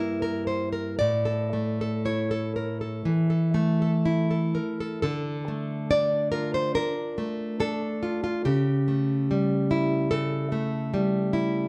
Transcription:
0.00 0.96 G2 medium
0.00 0.99 A#3 medium
0.00 0.99 E4 medium
0.00 0.21 A#4 medium
0.00 0.95 E5 loud
0.22 0.47 A#4 medium
0.47 0.72 C5 soft
0.73 0.98 A#4 medium
0.99 3.03 A2 medium
0.99 2.02 D5 loud
1.25 1.80 A4 medium
1.53 3.06 A3 soft
1.81 2.30 A4 medium
2.05 3.57 E4 soft
2.05 4.03 C#5 medium
2.31 2.56 A4 medium
2.56 2.81 A#4 soft
2.81 3.29 A4 medium
3.05 4.57 E3 medium
3.30 3.81 A4 medium
3.54 5.03 A3 medium
3.82 4.29 A4 medium
4.05 5.04 E4 medium
4.31 4.79 A4 medium
4.55 5.03 A#4 soft
4.80 5.01 A4 medium
5.02 6.72 D3 medium
5.02 5.86 A4 medium
5.48 6.77 A3 soft
5.91 6.73 D4 soft
5.91 6.31 D5 medium
6.32 7.61 F4 soft
6.32 6.54 A#4 medium
6.54 6.75 C5 medium
6.75 7.59 D4 medium
6.75 7.57 A#4 medium
7.18 8.45 A3 medium
7.60 8.45 D4 medium
7.60 8.21 A4 medium
8.03 8.22 F4 medium
8.24 8.45 F4 medium
8.45 10.08 C#3 medium
8.45 10.08 G4 medium
8.88 10.12 A3 soft
9.31 10.53 G3 medium
9.71 10.93 E4 medium
10.11 11.68 C#3 medium
10.11 11.68 A4 medium
10.52 11.68 A3 medium
10.94 11.68 G3 medium
11.33 11.68 E4 medium

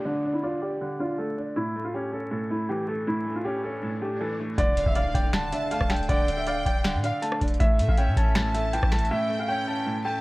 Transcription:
0.00 0.05 D3 medium
0.00 0.62 A3 medium
0.00 0.25 D4 medium
0.00 0.43 D5 medium
0.00 downlifter medium
0.05 0.80 D3 loud
0.05 0.32 D4 loud
0.25 0.98 D4 medium
0.33 0.41 E4 medium
0.43 0.58 F4 medium
0.43 0.60 D5 loud
0.62 0.97 G4 medium
0.62 1.56 D5 medium
0.81 1.56 D3 medium
0.99 1.36 D4 medium
0.99 1.15 F4 medium
1.18 1.56 A3 medium
1.18 1.33 A4 medium
1.38 1.56 D4 medium
1.56 2.30 A2 medium
1.56 1.83 E4 loud
1.56 swell medium
1.76 2.49 A3 medium
1.84 1.92 F4 medium
1.94 2.11 C#4 loud
1.94 2.09 G4 medium
2.13 3.07 C#4 medium
2.13 2.28 A4 medium
2.31 3.06 A2 medium
2.31 2.47 A4 medium
2.50 2.86 A3 medium
2.50 2.66 E4 medium
2.69 3.64 E3 medium
2.69 2.85 G4 medium
2.88 3.25 A3 medium
2.88 3.03 A4 medium
3.07 3.81 A2 medium
3.07 3.34 E4 loud
3.26 4.00 A3 medium
3.35 3.43 F4 medium
3.44 3.63 C#4 medium
3.44 3.60 G4 medium
3.64 4.58 C#4 medium
3.64 3.99 A4 medium
3.83 4.58 A2 medium
4.01 4.38 A3 medium
4.01 4.17 G4 medium
4.20 4.58 E3 medium
4.20 4.36 A4 medium
4.40 4.58 A3 medium
4.58 4.85 D1 loud
4.58 5.32 D3 medium
4.58 7.57 D4 medium
4.58 7.57 A4 medium
4.58 4.85 D5 loud
4.58 7.57 F5 medium
4.58 kick loud
4.58 closed hi-hat medium
4.58 impact medium
4.77 5.51 D4 medium
4.77 5.30 F5 medium
4.77 closed hi-hat medium
4.86 5.14 D1 loud
4.86 4.94 E5 medium
4.86 kick loud
4.95 5.14 D5 medium
4.95 5.11 F5 medium
4.95 closed hi-hat medium
5.14 5.51 D1 loud
5.14 6.09 D5 medium
5.14 5.30 G5 medium
5.14 kick loud
5.14 closed hi-hat medium
5.33 6.07 D3 medium
5.33 6.05 A5 medium
5.33 5.49 A5 medium
5.33 finger snap loud
5.33 snare loud
5.33 closed hi-hat medium
5.52 5.89 D4 medium
5.52 5.68 E5 medium
5.52 closed hi-hat medium
5.71 6.66 A3 medium
5.71 5.86 F5 medium
5.71 closed hi-hat medium
5.81 6.08 D1 loud
5.81 kick medium
5.81 cross-stick loud
5.90 6.27 D4 medium
5.90 6.06 G5 medium
5.90 finger snap medium
5.90 snare medium
5.90 closed hi-hat medium
5.96 closed hi-hat medium
6.03 closed hi-hat soft
6.09 6.63 D1 loud
6.09 6.83 D3 loud
6.09 6.36 D5 loud
6.09 6.99 G5 loud
6.09 kick loud
6.09 closed hi-hat medium
6.28 7.01 D4 medium
6.28 closed hi-hat medium
6.37 6.45 E5 medium
6.46 6.64 D5 loud
6.46 6.62 F5 medium
6.46 closed hi-hat medium
6.66 6.96 D1 loud
6.66 7.60 D5 medium
6.66 7.01 G5 medium
6.66 kick loud
6.66 closed hi-hat medium
6.84 7.60 D3 medium
6.84 finger snap medium
6.84 snare loud
6.84 closed hi-hat medium
6.94 7.12 A2 loud
7.03 7.40 D4 medium
7.03 7.21 F5 medium
7.03 7.19 F5 medium
7.03 closed hi-hat medium
7.22 7.60 A3 medium
7.22 7.37 A5 medium
7.22 closed hi-hat medium
7.32 cross-stick loud
7.41 7.59 D1 loud
7.41 7.60 D4 medium
7.41 kick medium
7.41 closed hi-hat medium
7.48 closed hi-hat medium
7.54 closed hi-hat soft
7.60 7.81 A1 loud
7.60 8.33 A2 medium
7.60 10.21 C#4 medium
7.60 10.21 A4 medium
7.60 7.87 E5 loud
7.60 10.21 E5 medium
7.60 kick loud
7.60 closed hi-hat medium
7.79 7.88 A2 loud
7.79 8.53 A3 medium
7.79 8.32 E5 medium
7.79 closed hi-hat medium
7.88 8.09 A1 loud
7.88 7.96 F5 medium
7.88 kick medium
7.97 8.15 C#4 loud
7.97 8.13 G5 medium
7.97 closed hi-hat medium
8.07 8.16 A2 loud
8.16 8.80 A1 loud
8.16 9.11 C#4 medium
8.16 8.32 A5 medium
8.16 kick loud
8.16 closed hi-hat medium
8.35 9.10 A2 medium
8.35 8.51 A5 medium
8.35 9.07 A5 medium
8.35 finger snap loud
8.35 snare loud
8.35 closed hi-hat medium
8.54 8.90 A3 medium
8.54 8.69 E5 medium
8.54 closed hi-hat medium
8.73 9.68 E3 medium
8.73 8.88 G5 medium
8.73 closed hi-hat medium
8.83 9.11 A1 loud
8.83 kick medium
8.83 cross-stick loud
8.91 9.28 A3 medium
8.91 9.07 A5 medium
8.91 finger snap medium
8.91 snare medium
8.91 closed hi-hat medium
8.99 closed hi-hat medium
9.05 closed hi-hat soft
9.11 9.85 A2 medium
9.11 9.38 E5 loud
9.11 10.01 G5 loud
9.30 10.03 A3 medium
9.39 9.47 F5 medium
9.48 9.66 C#4 loud
9.48 9.64 G5 medium
9.68 10.21 C#4 medium
9.68 10.03 A5 medium
9.86 10.21 A2 medium
10.05 10.21 A3 medium
10.05 10.21 G5 medium
10.05 10.21 A5 medium

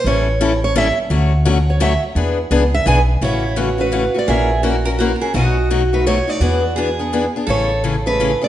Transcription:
0.04 0.89 A1 medium
0.04 0.27 E3 medium
0.04 0.27 G3 medium
0.04 0.27 C#4 medium
0.04 0.27 E4 medium
0.04 0.27 A4 medium
0.04 0.60 C#5 medium
0.41 0.52 E3 medium
0.41 0.52 G3 medium
0.41 0.52 C#4 medium
0.41 0.52 E4 loud
0.41 0.52 A4 loud
0.64 0.76 C#5 medium
0.76 0.87 E3 loud
0.76 0.87 G3 medium
0.76 0.87 C#4 medium
0.76 0.87 E4 loud
0.76 0.87 A4 loud
0.76 0.98 E5 loud
1.10 1.95 D2 medium
1.10 1.31 D3 medium
1.10 1.32 F#3 medium
1.10 1.32 A3 medium
1.10 1.32 C#4 medium
1.10 1.32 F#4 medium
1.45 1.57 D3 medium
1.45 1.57 F#3 medium
1.45 1.57 A3 medium
1.45 1.57 C#4 medium
1.45 1.57 F#4 loud
1.70 1.82 C#5 medium
1.80 1.92 D3 medium
1.80 1.92 F#3 loud
1.80 1.92 A3 loud
1.80 1.92 C#4 loud
1.80 1.92 F#4 loud
1.80 2.03 E5 medium
2.15 2.44 E2 medium
2.15 2.37 E3 medium
2.15 2.37 B3 medium
2.15 2.38 D4 medium
2.15 2.38 G#4 medium
2.51 2.81 C#2 medium
2.51 2.62 E3 medium
2.51 2.63 B3 medium
2.51 2.63 D4 medium
2.51 2.63 G#4 loud
2.74 2.87 E5 medium
2.86 3.16 B1 medium
2.86 2.97 E3 medium
2.86 2.98 B3 loud
2.86 2.98 D4 medium
2.86 2.98 G#4 loud
2.86 3.01 G#5 loud
3.21 4.06 A1 medium
3.21 3.43 C#3 medium
3.21 3.43 E3 medium
3.21 3.43 A3 medium
3.21 3.43 C#4 medium
3.21 3.55 E4 medium
3.21 3.44 F#4 medium
3.21 3.56 C#5 medium
3.56 3.68 C#3 medium
3.56 3.68 E3 medium
3.56 3.68 A3 medium
3.56 3.68 C#4 medium
3.56 4.30 F#4 medium
3.56 3.69 F#4 medium
3.78 3.91 A3 soft
3.78 3.91 C#4 soft
3.78 3.92 F#4 medium
3.78 4.18 B4 medium
3.92 4.03 C#3 medium
3.92 4.04 E3 medium
3.92 4.04 A3 medium
3.92 4.04 C#4 medium
3.92 4.04 F#4 medium
4.14 4.27 A3 soft
4.14 4.27 C#4 soft
4.14 4.27 F#4 soft
4.19 4.30 D5 medium
4.27 5.13 A#1 medium
4.27 4.49 E3 medium
4.27 4.49 A#3 medium
4.27 4.49 C#4 medium
4.27 4.50 F#4 medium
4.27 4.61 G#4 medium
4.27 4.49 A#4 medium
4.27 4.62 E5 medium
4.63 4.74 E3 medium
4.63 4.75 A#3 medium
4.63 4.75 C#4 medium
4.63 4.86 F#4 medium
4.63 4.75 F#4 medium
4.63 4.75 A#4 medium
4.85 4.99 C#4 soft
4.85 4.99 F#4 soft
4.85 4.90 A#4 medium
4.85 4.98 A#4 medium
4.99 5.11 E3 medium
4.99 5.11 A#3 medium
4.99 5.11 C#4 medium
4.99 5.14 F#4 medium
4.99 5.11 F#4 medium
4.99 5.11 A#4 medium
5.16 5.21 A#4 medium
5.21 5.34 C#4 soft
5.21 5.33 F#4 soft
5.21 5.34 G#4 medium
5.21 5.34 A#4 soft
5.34 6.19 B1 medium
5.34 5.55 B2 medium
5.34 5.56 F#3 medium
5.34 5.56 A3 medium
5.34 5.56 D#4 medium
5.34 6.10 F#4 medium
5.34 5.56 F#4 medium
5.34 5.68 D#5 medium
5.71 5.81 B2 medium
5.71 5.82 F#3 medium
5.71 5.82 A3 medium
5.71 5.82 D#4 medium
5.71 5.82 F#4 medium
5.93 6.06 A3 soft
5.93 6.05 D#4 soft
5.93 6.05 F#4 medium
5.93 6.07 B4 medium
6.06 6.17 B2 medium
6.06 6.17 F#3 medium
6.06 6.17 A3 medium
6.06 6.18 D#4 medium
6.06 6.18 F#4 medium
6.06 6.29 C#5 medium
6.10 6.40 E4 medium
6.27 6.41 A3 soft
6.27 6.41 D#4 soft
6.27 6.40 F#4 soft
6.27 6.77 D5 medium
6.40 7.26 E2 medium
6.40 6.62 E3 medium
6.40 6.62 B3 medium
6.40 6.62 D4 medium
6.40 6.76 F#4 medium
6.40 6.63 G#4 medium
6.76 6.88 E3 medium
6.76 6.88 B3 medium
6.76 6.88 D4 medium
6.76 7.30 G#4 medium
6.76 6.89 G#4 medium
6.99 7.12 B3 soft
6.99 7.12 D4 soft
6.99 7.12 G#4 medium
7.13 7.24 E3 medium
7.13 7.24 B3 medium
7.13 7.24 D4 medium
7.13 7.24 G#4 medium
7.36 7.48 B3 soft
7.36 7.48 D4 soft
7.36 7.48 G#4 medium
7.47 8.33 A1 medium
7.47 7.69 C#3 medium
7.47 7.69 E3 medium
7.47 7.69 A3 medium
7.47 7.70 C#4 medium
7.47 7.69 G#4 medium
7.47 8.48 A4 medium
7.47 7.82 C#5 medium
7.84 7.95 C#3 medium
7.84 7.95 E3 medium
7.84 7.95 A3 medium
7.84 7.95 C#4 medium
7.84 7.95 G#4 medium
8.06 8.19 A3 soft
8.06 8.19 C#4 soft
8.06 8.18 G#4 soft
8.06 8.43 B4 medium
8.20 8.31 C#3 medium
8.20 8.31 E3 medium
8.20 8.31 A3 medium
8.20 8.31 C#4 medium
8.20 8.31 G#4 medium
8.41 8.48 A3 soft
8.41 8.48 C#4 soft
8.41 8.48 G#4 medium
8.41 8.48 D5 medium

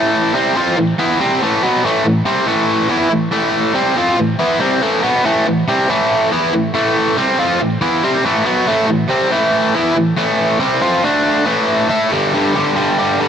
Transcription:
0.00 0.34 A2 medium
0.00 0.34 E3 medium
0.00 0.34 A3 medium
0.34 0.55 C3 medium
0.34 0.55 G3 medium
0.34 0.56 C4 medium
0.57 0.77 F3 medium
0.57 0.77 C4 medium
0.57 0.77 F4 medium
0.78 0.95 A2 medium
0.78 0.95 E3 medium
0.99 1.19 E3 medium
0.99 1.20 B3 medium
0.99 1.20 E4 medium
1.20 1.41 C3 medium
1.20 1.41 G3 medium
1.20 1.41 C4 loud
1.42 1.62 A2 medium
1.42 1.63 E3 medium
1.42 1.63 A3 medium
1.63 1.83 B2 medium
1.63 1.84 F#3 medium
1.63 1.84 B3 medium
1.84 2.03 A2 medium
1.84 2.04 E3 medium
1.84 2.05 A3 medium
2.04 2.22 A2 medium
2.04 2.22 E3 medium
2.25 2.46 C3 medium
2.25 2.47 G3 medium
2.25 2.47 C4 medium
2.47 2.89 A2 medium
2.47 2.88 E3 medium
2.47 2.90 A3 medium
2.89 3.10 E3 medium
2.89 3.11 B3 medium
2.89 3.11 E4 medium
3.11 3.28 A2 medium
3.11 3.28 E3 medium
3.32 3.74 A2 medium
3.32 3.74 E3 medium
3.32 3.75 A3 medium
3.74 3.96 C3 medium
3.74 3.96 G3 medium
3.74 3.96 C4 loud
3.96 4.17 F3 medium
3.96 4.17 C4 medium
3.96 4.18 F4 medium
4.17 4.35 A2 medium
4.17 4.35 E3 medium
4.39 4.59 E3 medium
4.39 4.60 B3 medium
4.39 4.60 E4 medium
4.60 4.81 C3 medium
4.60 4.81 G3 medium
4.60 4.82 C4 medium
4.82 5.02 A2 medium
4.82 5.02 E3 medium
4.82 5.03 A3 medium
5.03 5.24 B2 medium
5.03 5.24 F#3 medium
5.03 5.24 B3 medium
5.24 5.45 A2 medium
5.24 5.46 E3 medium
5.24 5.46 A3 medium
5.46 5.64 A2 medium
5.46 5.64 E3 medium
5.68 5.88 C3 medium
5.68 5.89 G3 medium
5.68 5.89 C4 medium
5.89 6.31 A2 medium
5.89 6.31 E3 medium
5.89 6.32 A3 medium
6.32 6.53 E3 medium
6.32 6.53 B3 medium
6.32 6.53 E4 medium
6.54 6.71 A2 medium
6.54 6.71 E3 medium
6.74 7.16 A2 medium
6.74 7.17 E3 medium
6.74 7.17 A3 medium
7.17 7.38 C3 medium
7.17 7.38 G3 medium
7.17 7.38 C4 loud
7.39 7.60 F3 medium
7.39 7.60 C4 medium
7.39 7.60 F4 medium
7.60 7.77 A2 medium
7.60 7.78 E3 medium
7.81 8.02 E3 medium
7.81 8.03 B3 medium
7.81 8.03 E4 medium
8.03 8.24 C3 medium
8.03 8.24 G3 medium
8.03 8.24 C4 medium
8.25 8.45 A2 medium
8.25 8.45 E3 medium
8.25 8.46 A3 medium
8.45 8.66 B2 medium
8.45 8.67 F#3 medium
8.45 8.67 B3 medium
8.68 8.87 A2 medium
8.68 8.88 E3 medium
8.68 8.89 A3 medium
8.89 9.06 A2 medium
8.89 9.06 E3 medium
9.09 9.30 C3 medium
9.09 9.31 G3 medium
9.09 9.31 C4 medium
9.32 9.74 A2 medium
9.32 9.73 E3 medium
9.32 9.74 A3 loud
9.75 9.94 E3 medium
9.75 9.95 B3 medium
9.75 9.96 E4 loud
9.95 10.13 A2 medium
9.95 10.13 E3 medium
10.17 10.59 A2 medium
10.17 10.59 E3 medium
10.17 10.60 A3 medium
10.60 10.81 C3 medium
10.60 10.81 G3 medium
10.60 10.81 C4 medium
10.82 11.02 F3 medium
10.82 11.03 C4 medium
10.82 11.03 F4 medium
11.04 11.45 D3 medium
11.04 11.46 A3 medium
11.04 11.46 D4 medium
11.46 11.88 A2 medium
11.46 11.88 E3 medium
11.46 11.88 A3 medium
11.90 12.10 A3 medium
11.90 12.10 E4 medium
11.90 12.10 A4 medium
12.11 12.32 G2 medium
12.11 12.33 D3 medium
12.11 12.33 G3 medium
12.34 12.54 G2 medium
12.34 12.54 D3 medium
12.34 12.55 G3 medium
12.55 12.74 G2 medium
12.55 12.75 D3 medium
12.55 12.75 G3 medium
12.75 12.97 G2 loud
12.75 12.97 D3 loud
12.75 12.98 G3 loud
12.98 13.18 G2 medium
12.98 13.19 D3 medium
12.98 13.19 G3 medium
13.19 13.28 G2 medium
13.19 13.28 D3 loud
13.19 13.28 G3 medium

